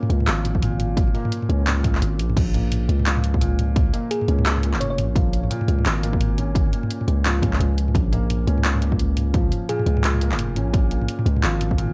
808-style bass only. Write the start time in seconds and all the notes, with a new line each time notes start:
0.10 C#2
0.27 G#1
1.49 C#2
2.02 G#1
2.19 A#1
2.36 A#1
2.89 C#2
4.28 C#2
4.74 F1
4.99 A#1
5.68 C#2
5.86 G#1
7.08 C#2
7.42 C#2
7.60 C#2
7.95 A#1
8.47 C#2
9.86 C#2
10.32 F1
10.56 A#1
11.26 C#2
11.43 G#1